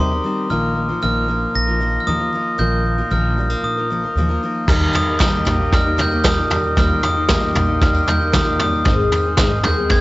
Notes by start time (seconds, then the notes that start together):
Already playing: C3 D#3 C4 D#4 C6
0.00 D#2 G3 C4 D#4 G4
0.11 C4 D#4 G4
0.24 G3 C4 D#4 G4
0.50 A#1 A#2 D#3 F3 A#3 D#4 F4 A#4 F6
0.77 A#3
0.89 F3 A#3 F4 A#4
1.02 A#1 A#2 D#3 F3 A#3 D#4 F4 A#4 F6
1.28 F3 A#3 F4 A#4
1.54 A#1 D#4 A#6
1.67 F3 A#3 F4 A#4
1.80 D#3 F3 A#3 F4 A#4
2.00 F6
2.07 D#2 A#2 D#3 F3 A#3 F4 A#4 D#6
2.19 F3 A#3 F4 A#4
2.33 F3 A#3 D#4 F4 A#4
2.58 A#1 A#2 D#3 F3 A#3 F4 A#4 G6
2.86 A#3
2.98 F3 A#3 F4 A#4
3.11 A#1 A#2 D#3 F3 A#3 D#4 F4 A#4 F6
3.37 F3 G3 A#3 F4 A#4
3.50 A#3
3.63 A#1 D#4 D#6
3.78 F3 A#3 F4 A#4
3.90 D#3 F3 A#3 F4 A#4
4.04 F3 A#3 F4 A#4
4.16 D#2 A#2 D#3 F3 A#3 F4 A#4
4.29 F3 A#3 F4 A#4
4.43 F3 A#3 D#4 F4 A#4
4.67 D#2 D#3 G3 A#3 D#4 G4 A#4 D#5 A#5 F6, kick, floor tom, crash, tambourine
4.81 tambourine
4.93 G3 A#3 D#4 D#6, floor tom, tambourine
4.98 G4
5.07 A#3 D#4 G4
5.19 D#2 D#3 G3 A#3 D#4 G4 A#4, kick, snare, clap, floor tom, tambourine
5.23 G4
5.45 A#1 D#3 G3 A#3 D#4, floor tom, tambourine
5.50 G4
5.59 A#3 D#4 G4
5.71 D#2 G3 A#3 D#4 A#4 F6, kick, floor tom
5.85 A#3 D#4 G4
5.97 G3 A#3 D#4 G4 G6, clap, floor tom, tambourine
6.11 A#3 D#4 G4, tambourine
6.24 D#2 A#2 D#3 G3 A#3 D#4 G4 A#4 D#6, kick, snare, clap, floor tom, tambourine
6.36 A#3 D#4 G4
6.50 G3, floor tom, tambourine
6.64 tambourine
6.76 D#2 D#3 G3 A#3 D#4 F4 G4 C6 F6, kick, floor tom, tambourine
6.91 tambourine
7.01 G3 A#3 D#4 G4 D#6, floor tom, tambourine
7.14 A#3 D#4 G4
7.28 D#2 D#3 G3 A#3 D#4 F4 G4, kick, snare, clap, floor tom, tambourine
7.41 A#3 D#4 G4, tambourine
7.52 A#1 D#3 G3 A#3 D#4 G4, floor tom, tambourine
7.67 A#3 D#4 G4
7.81 D#2 G3 A#3 D#4 A#4 F6, kick, floor tom
7.94 A#3 D#4 G4, tambourine
8.06 G3 A#3 D#4 G4 G6, clap, floor tom, tambourine
8.19 A#3 D#4 G4, tambourine
8.32 D#2 A#2 D#3 G3 A#3 D#4 G4 A#4 D#6, kick, snare, clap, floor tom, tambourine
8.45 A#3 D#4 G4, tambourine
8.59 G3 D#6, floor tom, tambourine
8.73 tambourine
8.84 G#1 G#2 D#3 G#3 C4 D#4 G#4 C5, kick, floor tom, tambourine
8.88 D#4 G#4 C5
9.00 tambourine
9.12 G#3 C4 D#4 G#4, floor tom, tambourine
9.26 G#3 C4 D#4 G#4
9.37 G#1 G#2 D#3 G#3 C4 D#4 G#4 C5, kick, snare, clap, floor tom, tambourine
9.50 G#3 C4 D#4 G#4, tambourine
9.63 D#2 D#3 G#3 C4 D#4 G#4 G6, floor tom, tambourine
9.77 G#3 C4 D#4 G#4
9.90 G#1 G#3 C4 D#4 C5 G#6, kick, floor tom